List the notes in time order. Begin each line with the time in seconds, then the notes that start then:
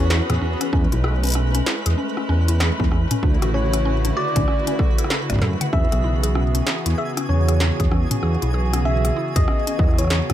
Already playing: E2 E3 B3 C#4 F#4 G#4 B4 C#5
0.10 E4, snare
0.30 E2 G#4, cross-stick, closed hi-hat, mid tom
0.41 E2 C#4
0.61 C#4, cross-stick, closed hi-hat
0.73 E2 G#3 A3 C#4, kick
0.92 B1 E4, closed hi-hat
1.04 G#4, cross-stick
1.23 C#4, closed hi-hat
1.25 closed hi-hat
1.27 closed hi-hat
1.29 closed hi-hat
1.30 closed hi-hat
1.32 closed hi-hat
1.34 C#4, cross-stick, closed hi-hat
1.55 C#4, closed hi-hat
1.66 E4, snare
1.86 E2 G#4, closed hi-hat
1.98 C#4
2.17 C#4, cross-stick
2.29 E2 C#4
2.48 E4, closed hi-hat
2.60 G#4, cross-stick, snare
2.80 E2 C#4, kick
2.91 E2 C#4, cross-stick
3.11 C#4, closed hi-hat, mid tom
3.23 D2 C#3 D3 D4 E4 F#4, kick
3.42 A1 F#4, cross-stick, closed hi-hat
3.54 C#4 C#5
3.73 C#4, cross-stick, closed hi-hat
3.85 C#4
4.05 D4, closed hi-hat
4.17 F#4 D5
4.36 D2 C#4, kick, closed hi-hat, mid tom
4.48 C#4, cross-stick
4.67 C#4, closed hi-hat
4.79 A4, kick
4.98 A4, closed hi-hat
5.04 cross-stick
5.10 A4, snare
5.30 A1 D5, kick, cross-stick, closed hi-hat, mid tom
5.33 kick
5.36 kick
5.39 F#2 A4, kick, snare, mid tom
5.61 F#5, closed hi-hat, mid tom
5.73 E2 E3 B3 C#4 F#4 G#4 E5 G#5, kick
5.92 B1 G#4, cross-stick, closed hi-hat
6.04 E4
6.23 G#4, closed hi-hat
6.35 C#4, cross-stick
6.55 C#4, closed hi-hat
6.67 G#4, cross-stick, snare
6.86 E2 E4, closed hi-hat
6.98 G#4 E5
7.17 C#4, cross-stick, closed hi-hat
7.29 E2 C#4 C#5
7.48 G#4, cross-stick, closed hi-hat
7.60 E4, snare
7.80 E2 G#4, kick, closed hi-hat
7.92 E2 C#4, cross-stick
8.11 C#4, closed hi-hat, mid tom
8.23 E2 G#4, cross-stick
8.42 B1 E4, closed hi-hat
8.54 G#4
8.73 C#4, cross-stick, closed hi-hat
8.85 C#4 E5
9.05 G#4, cross-stick, closed hi-hat
9.17 E4
9.36 E2 G#4 D#5, kick, closed hi-hat, mid tom
9.48 C#4, cross-stick
9.67 C#4, closed hi-hat
9.79 E2 G#4, kick, cross-stick
9.84 cross-stick
9.89 cross-stick
9.94 cross-stick
9.98 E4 C#5, cross-stick, closed hi-hat
10.01 cross-stick
10.04 cross-stick
10.07 G#4 C#5, cross-stick, snare
10.30 E2 C#4, cross-stick, closed hi-hat, mid tom